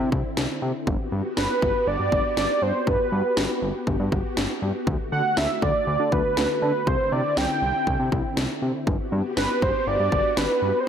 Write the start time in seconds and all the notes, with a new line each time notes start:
Already playing: D3 C4 E4
0.12 C2, kick
0.37 C2, snare
0.62 C3
0.87 G1 B3 F#4 G4, kick
1.12 G2
1.37 G1 B4, snare
1.62 G1, kick
1.87 G1 D5
2.00 G2
2.12 G1, kick
2.37 G1 D5, snare
2.62 G2 C5
2.87 G1 B4, kick
3.12 G2
3.37 G1, snare
3.62 G1
3.87 G1, kick
4.00 G2
4.12 G1, kick
4.37 G1, snare
4.62 G2
4.87 D2 D3 A3 F#4, kick
5.12 D3 F#5
5.37 D2 E5, snare
5.62 D2 D5, kick
5.87 D2
6.00 D3
6.12 D2 B4, kick
6.37 D2, snare
6.62 D3 B4
6.87 C2 C4 E4 C5, kick
7.12 C3 D5
7.37 C2 G5, snare
7.62 C2
7.87 C2, kick
8.00 C3
8.12 C2, kick
8.37 C2, snare
8.62 C3
8.87 G1 B3 F#4 G4, kick
9.12 G2
9.37 G1 B4, snare
9.62 G1 C5, kick
9.87 G1 D5
10.00 G2
10.12 G1, kick
10.37 G1 B4, snare
10.62 G2
10.80 C5